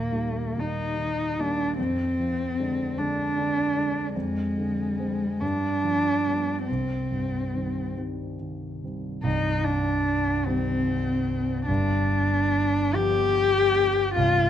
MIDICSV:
0, 0, Header, 1, 3, 480
1, 0, Start_track
1, 0, Tempo, 855920
1, 548, Tempo, 791557
1, 1033, Time_signature, 6, 3, 24, 8
1, 2468, Tempo, 851064
1, 5348, Tempo, 810811
1, 6788, Tempo, 839161
1, 7748, Tempo, 798935
1, 8431, End_track
2, 0, Start_track
2, 0, Title_t, "Cello"
2, 0, Program_c, 0, 42
2, 0, Note_on_c, 0, 58, 55
2, 332, Note_on_c, 0, 63, 52
2, 340, Note_off_c, 0, 58, 0
2, 801, Note_on_c, 0, 62, 59
2, 810, Note_off_c, 0, 63, 0
2, 1038, Note_off_c, 0, 62, 0
2, 1050, Note_on_c, 0, 60, 65
2, 1761, Note_on_c, 0, 62, 62
2, 1770, Note_off_c, 0, 60, 0
2, 2468, Note_off_c, 0, 62, 0
2, 2471, Note_on_c, 0, 56, 61
2, 3176, Note_on_c, 0, 62, 65
2, 3185, Note_off_c, 0, 56, 0
2, 3881, Note_off_c, 0, 62, 0
2, 3885, Note_on_c, 0, 60, 48
2, 4597, Note_off_c, 0, 60, 0
2, 5338, Note_on_c, 0, 63, 60
2, 5576, Note_on_c, 0, 62, 65
2, 5585, Note_off_c, 0, 63, 0
2, 6058, Note_on_c, 0, 60, 64
2, 6067, Note_off_c, 0, 62, 0
2, 6773, Note_off_c, 0, 60, 0
2, 6777, Note_on_c, 0, 62, 69
2, 7510, Note_on_c, 0, 67, 78
2, 7519, Note_off_c, 0, 62, 0
2, 8218, Note_off_c, 0, 67, 0
2, 8222, Note_on_c, 0, 65, 74
2, 8431, Note_off_c, 0, 65, 0
2, 8431, End_track
3, 0, Start_track
3, 0, Title_t, "Grand piano"
3, 0, Program_c, 1, 0
3, 0, Control_c, 1, 64, 127
3, 0, Note_on_c, 1, 39, 39
3, 0, Note_on_c, 1, 46, 30
3, 64, Note_on_c, 1, 55, 31
3, 65, Note_on_c, 1, 51, 32
3, 71, Note_on_c, 1, 58, 33
3, 219, Note_off_c, 1, 46, 0
3, 290, Note_off_c, 1, 55, 0
3, 291, Note_off_c, 1, 51, 0
3, 293, Note_off_c, 1, 58, 0
3, 318, Note_on_c, 1, 51, 31
3, 318, Note_on_c, 1, 55, 32
3, 319, Note_on_c, 1, 58, 33
3, 526, Note_off_c, 1, 51, 0
3, 527, Note_off_c, 1, 55, 0
3, 527, Note_off_c, 1, 58, 0
3, 542, Note_on_c, 1, 51, 32
3, 781, Note_off_c, 1, 51, 0
3, 790, Note_on_c, 1, 51, 28
3, 795, Note_on_c, 1, 55, 34
3, 797, Note_on_c, 1, 58, 34
3, 1008, Note_off_c, 1, 51, 0
3, 1009, Note_off_c, 1, 39, 0
3, 1011, Note_off_c, 1, 55, 0
3, 1012, Note_off_c, 1, 58, 0
3, 1042, Control_c, 1, 64, 0
3, 1042, Note_on_c, 1, 41, 48
3, 1132, Control_c, 1, 64, 127
3, 1287, Note_on_c, 1, 53, 36
3, 1531, Note_on_c, 1, 50, 34
3, 1531, Note_on_c, 1, 62, 40
3, 1534, Note_on_c, 1, 56, 33
3, 1661, Note_off_c, 1, 53, 0
3, 1735, Note_off_c, 1, 50, 0
3, 1735, Note_off_c, 1, 62, 0
3, 1737, Note_off_c, 1, 56, 0
3, 1764, Note_on_c, 1, 50, 36
3, 1764, Note_on_c, 1, 62, 39
3, 1766, Note_on_c, 1, 56, 37
3, 1970, Note_off_c, 1, 50, 0
3, 1970, Note_off_c, 1, 62, 0
3, 1971, Note_off_c, 1, 56, 0
3, 2005, Note_on_c, 1, 50, 38
3, 2225, Note_off_c, 1, 50, 0
3, 2234, Note_on_c, 1, 50, 33
3, 2238, Note_on_c, 1, 56, 35
3, 2239, Note_on_c, 1, 62, 43
3, 2447, Note_off_c, 1, 41, 0
3, 2448, Note_off_c, 1, 50, 0
3, 2450, Note_off_c, 1, 56, 0
3, 2451, Note_off_c, 1, 62, 0
3, 2476, Note_on_c, 1, 41, 49
3, 2478, Control_c, 1, 64, 0
3, 2577, Control_c, 1, 64, 127
3, 2714, Note_on_c, 1, 50, 39
3, 2944, Note_on_c, 1, 56, 38
3, 2949, Note_on_c, 1, 60, 40
3, 3097, Note_off_c, 1, 50, 0
3, 3165, Note_off_c, 1, 56, 0
3, 3167, Note_off_c, 1, 60, 0
3, 3170, Note_off_c, 1, 41, 0
3, 3185, Note_on_c, 1, 43, 51
3, 3199, Control_c, 1, 64, 0
3, 3302, Control_c, 1, 64, 127
3, 3427, Note_on_c, 1, 53, 36
3, 3664, Note_on_c, 1, 55, 29
3, 3669, Note_on_c, 1, 59, 29
3, 3803, Note_off_c, 1, 53, 0
3, 3876, Note_off_c, 1, 43, 0
3, 3877, Note_off_c, 1, 55, 0
3, 3880, Note_off_c, 1, 59, 0
3, 3908, Control_c, 1, 64, 0
3, 3911, Note_on_c, 1, 36, 36
3, 3997, Control_c, 1, 64, 127
3, 4144, Note_on_c, 1, 43, 31
3, 4383, Note_on_c, 1, 51, 28
3, 4385, Note_on_c, 1, 55, 26
3, 4390, Note_on_c, 1, 60, 31
3, 4525, Note_off_c, 1, 43, 0
3, 4599, Note_off_c, 1, 51, 0
3, 4600, Note_off_c, 1, 55, 0
3, 4602, Note_off_c, 1, 60, 0
3, 4622, Note_on_c, 1, 51, 29
3, 4624, Note_on_c, 1, 55, 25
3, 4629, Note_on_c, 1, 60, 30
3, 4842, Note_off_c, 1, 51, 0
3, 4843, Note_off_c, 1, 55, 0
3, 4846, Note_off_c, 1, 60, 0
3, 4866, Note_on_c, 1, 51, 28
3, 5106, Note_off_c, 1, 51, 0
3, 5115, Note_on_c, 1, 51, 23
3, 5115, Note_on_c, 1, 55, 24
3, 5121, Note_on_c, 1, 60, 26
3, 5329, Note_off_c, 1, 51, 0
3, 5329, Note_off_c, 1, 55, 0
3, 5330, Note_off_c, 1, 36, 0
3, 5332, Note_off_c, 1, 60, 0
3, 5338, Note_on_c, 1, 36, 48
3, 5339, Note_on_c, 1, 24, 46
3, 5361, Control_c, 1, 64, 0
3, 5471, Control_c, 1, 64, 127
3, 6072, Note_on_c, 1, 51, 37
3, 6072, Note_on_c, 1, 55, 39
3, 6074, Note_on_c, 1, 60, 41
3, 6758, Note_off_c, 1, 36, 0
3, 6759, Note_off_c, 1, 24, 0
3, 6765, Note_off_c, 1, 51, 0
3, 6765, Note_off_c, 1, 55, 0
3, 6766, Note_off_c, 1, 60, 0
3, 6789, Note_on_c, 1, 43, 55
3, 6792, Note_on_c, 1, 31, 44
3, 6799, Control_c, 1, 64, 0
3, 6883, Control_c, 1, 64, 127
3, 7518, Note_on_c, 1, 53, 36
3, 7518, Note_on_c, 1, 59, 42
3, 7519, Note_on_c, 1, 55, 40
3, 8204, Note_off_c, 1, 43, 0
3, 8204, Note_off_c, 1, 53, 0
3, 8204, Note_off_c, 1, 59, 0
3, 8205, Note_off_c, 1, 31, 0
3, 8205, Note_off_c, 1, 55, 0
3, 8228, Note_on_c, 1, 24, 51
3, 8230, Note_on_c, 1, 36, 58
3, 8239, Control_c, 1, 64, 0
3, 8340, Control_c, 1, 64, 127
3, 8431, Note_off_c, 1, 24, 0
3, 8431, Note_off_c, 1, 36, 0
3, 8431, End_track
0, 0, End_of_file